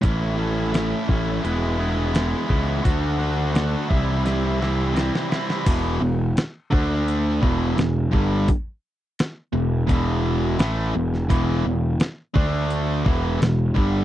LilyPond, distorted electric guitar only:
\new Staff \with { instrumentName = "Distorted electric guitar" } { \clef bass \time 4/4 \key a \major \tempo 4 = 85 <a, e a cis' e'>8 <a, e a cis' e'>8 <a, e a cis' e'>8 <a, e a cis' e'>8 <e gis b e'>8 <e gis b e'>8 <e gis b e'>8 <e gis b e'>8 | <d a d' fis'>8 <d a d' fis'>8 <d a d' fis'>8 <c e g c' e'>8 <c e g c' e'>8 <c e g c' e'>8 <c e g c' e'>8 <c e g c' e'>8 | <e, b, e>8 <e, b,>8 r8 <d a d'>4 <e, b, e>8 <e, b,>8 <g, d g>8 | r4. <e, b,>8 <e, b, e>4 <a, e a>8 <e, b,>8 |
<e, b, e>8 <e, b,>8 r8 <d a d'>4 <e, b, e>8 <e, b,>8 <g, d g>8 | }